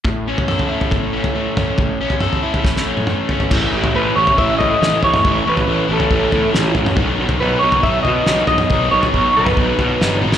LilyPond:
<<
  \new Staff \with { instrumentName = "Clean electric guitar" } { \time 4/4 \key a \lydian \tempo 4 = 139 r1 | r1 | r4 b'8 cis''8 e''8 dis''4 cis''8~ | cis''8 b'4 a'2 r8 |
r4 b'8 cis''8 e''8 dis''4 dis''8~ | dis''8 cis''4 b'2 r8 | }
  \new Staff \with { instrumentName = "Overdriven electric guitar" } { \time 4/4 \key a \lydian a,8 cis'8 a'8 e'8 a8 cis'8 a8 cis'8 | a,8 cis'8 a'8 e'8 a8 cis'8 a8 cis'8 | <a, e a cis' e'>8 <a cis' e'>8 <e a cis' e'>8 <a cis' e'>8 <a, e a cis' e'>8 <a cis' e'>8 <e a cis' e'>4 | <a, e a cis' e'>8 <a cis' e'>8 <e a cis' e'>8 <a cis' e'>8 <a, e a cis' e'>8 <a cis' e'>8 <e a cis' e'>4 |
<b, dis fis b dis'>8 <fis b dis'>8 <dis fis b dis'>8 <fis b dis'>8 <b, dis fis b dis'>8 <fis b dis'>8 <dis fis b dis'>4 | <b, dis fis b dis'>8 <fis b dis'>8 <dis fis b dis'>8 <fis b dis'>8 <b, dis fis b dis'>8 <fis b dis'>8 <dis fis b dis'>8 <gis, dis gis b dis'>8 | }
  \new Staff \with { instrumentName = "Picked electric bass" } { \clef bass \time 4/4 \key a \lydian r1 | r1 | a,,8 a,,8 a,,8 a,,8 a,,8 a,8 a,,8 a,,8 | a,,8 a,,8 a,,8 a,,8 a,,8 a,8 a,,8 a,,8 |
b,,8 b,,8 b,,8 b,,8 b,,8 b,8 b,,8 b,,8 | b,,8 b,,8 b,,8 b,,8 b,,8 b,8 g,,8 gis,,8 | }
  \new DrumStaff \with { instrumentName = "Drums" } \drummode { \time 4/4 <bd tomfh>8. tomfh16 toml16 tomfh8 tomfh16 <bd tomfh>8. tomfh16 r8 <tomfh toml>8 | <bd tomfh>8. tomfh16 toml16 tomfh8 tomfh16 <bd sn>16 sn8 tommh16 toml8 tomfh16 tomfh16 | <cymc bd tomfh>8. tomfh16 r8. tomfh16 bd8 tomfh8 sn8 tomfh16 toml16 | <bd tomfh>8. tomfh16 r8. tomfh16 bd8 tomfh8 sn8 tomfh16 toml16 |
<bd tomfh>8. tomfh16 r8. tomfh16 bd8 tomfh8 sn8 tomfh16 toml16 | <bd tomfh>8. tomfh16 bd8. <tomfh toml>16 bd8 tomfh8 sn8 tommh16 sn16 | }
>>